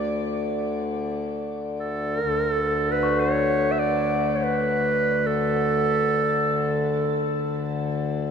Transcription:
0, 0, Header, 1, 4, 480
1, 0, Start_track
1, 0, Key_signature, 2, "major"
1, 0, Tempo, 500000
1, 7976, End_track
2, 0, Start_track
2, 0, Title_t, "Clarinet"
2, 0, Program_c, 0, 71
2, 0, Note_on_c, 0, 74, 88
2, 621, Note_off_c, 0, 74, 0
2, 1728, Note_on_c, 0, 69, 79
2, 2800, Note_on_c, 0, 71, 67
2, 2814, Note_off_c, 0, 69, 0
2, 3071, Note_on_c, 0, 73, 69
2, 3085, Note_off_c, 0, 71, 0
2, 3567, Note_on_c, 0, 76, 61
2, 3582, Note_off_c, 0, 73, 0
2, 3641, Note_on_c, 0, 74, 79
2, 3655, Note_off_c, 0, 76, 0
2, 4182, Note_on_c, 0, 73, 53
2, 4197, Note_off_c, 0, 74, 0
2, 4258, Note_on_c, 0, 71, 76
2, 4272, Note_off_c, 0, 73, 0
2, 5055, Note_on_c, 0, 69, 75
2, 5070, Note_off_c, 0, 71, 0
2, 7217, Note_off_c, 0, 69, 0
2, 7976, End_track
3, 0, Start_track
3, 0, Title_t, "Tubular bells"
3, 0, Program_c, 1, 14
3, 2909, Note_on_c, 1, 66, 42
3, 7976, Note_off_c, 1, 66, 0
3, 7976, End_track
4, 0, Start_track
4, 0, Title_t, "Harmonium"
4, 0, Program_c, 2, 20
4, 0, Note_on_c, 2, 38, 55
4, 0, Note_on_c, 2, 50, 56
4, 2105, Note_off_c, 2, 38, 0
4, 2110, Note_off_c, 2, 50, 0
4, 2119, Note_on_c, 2, 38, 58
4, 2125, Note_on_c, 2, 50, 54
4, 7976, Note_off_c, 2, 38, 0
4, 7976, Note_off_c, 2, 50, 0
4, 7976, End_track
0, 0, End_of_file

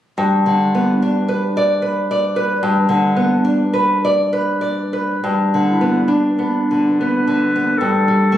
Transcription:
0, 0, Header, 1, 3, 480
1, 0, Start_track
1, 0, Key_signature, 1, "major"
1, 0, Tempo, 815217
1, 112, Time_signature, 3, 2, 24, 8
1, 2028, Tempo, 886263
1, 3948, Tempo, 798935
1, 4781, End_track
2, 0, Start_track
2, 0, Title_t, "Clarinet"
2, 0, Program_c, 0, 71
2, 3237, Note_on_c, 0, 64, 37
2, 3463, Note_on_c, 0, 62, 33
2, 3471, Note_off_c, 0, 64, 0
2, 3949, Note_on_c, 0, 71, 43
2, 3958, Note_off_c, 0, 62, 0
2, 4423, Note_on_c, 0, 69, 48
2, 4432, Note_off_c, 0, 71, 0
2, 4781, Note_off_c, 0, 69, 0
2, 4781, End_track
3, 0, Start_track
3, 0, Title_t, "Nylon-string guitar"
3, 0, Program_c, 1, 24
3, 104, Note_on_c, 1, 43, 33
3, 271, Note_on_c, 1, 50, 23
3, 440, Note_on_c, 1, 59, 25
3, 534, Note_off_c, 1, 50, 0
3, 603, Note_on_c, 1, 62, 26
3, 697, Note_off_c, 1, 59, 0
3, 756, Note_on_c, 1, 71, 28
3, 858, Note_off_c, 1, 62, 0
3, 924, Note_on_c, 1, 74, 31
3, 1015, Note_off_c, 1, 71, 0
3, 1072, Note_on_c, 1, 71, 28
3, 1177, Note_off_c, 1, 74, 0
3, 1241, Note_on_c, 1, 74, 30
3, 1328, Note_off_c, 1, 71, 0
3, 1391, Note_on_c, 1, 71, 33
3, 1490, Note_off_c, 1, 74, 0
3, 1523, Note_off_c, 1, 43, 0
3, 1547, Note_on_c, 1, 43, 40
3, 1641, Note_off_c, 1, 71, 0
3, 1700, Note_on_c, 1, 50, 32
3, 1863, Note_on_c, 1, 59, 33
3, 1959, Note_off_c, 1, 50, 0
3, 2029, Note_on_c, 1, 62, 35
3, 2120, Note_off_c, 1, 59, 0
3, 2185, Note_on_c, 1, 71, 35
3, 2279, Note_off_c, 1, 62, 0
3, 2352, Note_off_c, 1, 71, 0
3, 2354, Note_on_c, 1, 74, 37
3, 2507, Note_on_c, 1, 71, 34
3, 2604, Note_off_c, 1, 74, 0
3, 2660, Note_on_c, 1, 74, 34
3, 2768, Note_off_c, 1, 71, 0
3, 2833, Note_on_c, 1, 71, 30
3, 2929, Note_off_c, 1, 74, 0
3, 2972, Note_off_c, 1, 43, 0
3, 2995, Note_off_c, 1, 71, 0
3, 2999, Note_on_c, 1, 43, 33
3, 3163, Note_on_c, 1, 50, 24
3, 3309, Note_on_c, 1, 59, 26
3, 3408, Note_off_c, 1, 50, 0
3, 3455, Note_on_c, 1, 62, 25
3, 3559, Note_off_c, 1, 59, 0
3, 3621, Note_on_c, 1, 59, 25
3, 3717, Note_off_c, 1, 62, 0
3, 3796, Note_on_c, 1, 50, 26
3, 3883, Note_off_c, 1, 59, 0
3, 3959, Note_on_c, 1, 59, 25
3, 4054, Note_off_c, 1, 50, 0
3, 4119, Note_on_c, 1, 50, 25
3, 4220, Note_off_c, 1, 59, 0
3, 4288, Note_on_c, 1, 59, 28
3, 4374, Note_off_c, 1, 50, 0
3, 4414, Note_off_c, 1, 43, 0
3, 4440, Note_on_c, 1, 43, 34
3, 4441, Note_off_c, 1, 59, 0
3, 4603, Note_on_c, 1, 55, 27
3, 4748, Note_on_c, 1, 57, 29
3, 4781, Note_off_c, 1, 43, 0
3, 4781, Note_off_c, 1, 55, 0
3, 4781, Note_off_c, 1, 57, 0
3, 4781, End_track
0, 0, End_of_file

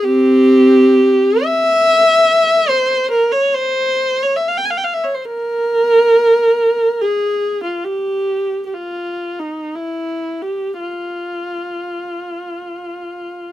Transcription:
0, 0, Header, 1, 2, 480
1, 0, Start_track
1, 0, Key_signature, -4, "minor"
1, 0, Tempo, 903614
1, 27, Time_signature, 4, 2, 24, 8
1, 990, Tempo, 842697
1, 2910, Tempo, 874636
1, 4830, Tempo, 998336
1, 5310, Tempo, 1065719
1, 5790, Tempo, 1119403
1, 6270, Tempo, 1048951
1, 7005, End_track
2, 0, Start_track
2, 0, Title_t, "Viola"
2, 0, Program_c, 0, 41
2, 26, Note_on_c, 0, 67, 85
2, 29, Note_on_c, 0, 60, 78
2, 737, Note_off_c, 0, 60, 0
2, 757, Note_off_c, 0, 67, 0
2, 764, Note_on_c, 0, 76, 96
2, 1460, Note_on_c, 0, 72, 81
2, 1466, Note_off_c, 0, 76, 0
2, 1700, Note_off_c, 0, 72, 0
2, 1700, Note_on_c, 0, 70, 78
2, 1817, Note_off_c, 0, 70, 0
2, 1818, Note_on_c, 0, 73, 72
2, 1938, Note_off_c, 0, 73, 0
2, 1946, Note_on_c, 0, 72, 82
2, 2331, Note_off_c, 0, 72, 0
2, 2337, Note_on_c, 0, 73, 72
2, 2413, Note_off_c, 0, 73, 0
2, 2413, Note_on_c, 0, 76, 57
2, 2475, Note_off_c, 0, 76, 0
2, 2482, Note_on_c, 0, 77, 64
2, 2531, Note_off_c, 0, 77, 0
2, 2535, Note_on_c, 0, 79, 65
2, 2577, Note_off_c, 0, 79, 0
2, 2578, Note_on_c, 0, 80, 55
2, 2608, Note_on_c, 0, 77, 59
2, 2616, Note_off_c, 0, 80, 0
2, 2648, Note_on_c, 0, 79, 60
2, 2651, Note_off_c, 0, 77, 0
2, 2686, Note_on_c, 0, 77, 54
2, 2693, Note_off_c, 0, 79, 0
2, 2738, Note_off_c, 0, 77, 0
2, 2741, Note_on_c, 0, 76, 57
2, 2793, Note_off_c, 0, 76, 0
2, 2798, Note_on_c, 0, 73, 59
2, 2852, Note_off_c, 0, 73, 0
2, 2858, Note_on_c, 0, 72, 55
2, 2913, Note_off_c, 0, 72, 0
2, 2921, Note_on_c, 0, 70, 85
2, 3880, Note_off_c, 0, 70, 0
2, 3886, Note_on_c, 0, 68, 67
2, 4227, Note_off_c, 0, 68, 0
2, 4228, Note_on_c, 0, 65, 50
2, 4338, Note_off_c, 0, 65, 0
2, 4342, Note_on_c, 0, 67, 59
2, 4781, Note_off_c, 0, 67, 0
2, 4787, Note_on_c, 0, 67, 37
2, 4829, Note_off_c, 0, 67, 0
2, 4830, Note_on_c, 0, 65, 50
2, 5146, Note_off_c, 0, 65, 0
2, 5148, Note_on_c, 0, 63, 44
2, 5311, Note_off_c, 0, 63, 0
2, 5321, Note_on_c, 0, 64, 48
2, 5620, Note_on_c, 0, 67, 43
2, 5630, Note_off_c, 0, 64, 0
2, 5788, Note_off_c, 0, 67, 0
2, 5793, Note_on_c, 0, 65, 43
2, 7005, Note_off_c, 0, 65, 0
2, 7005, End_track
0, 0, End_of_file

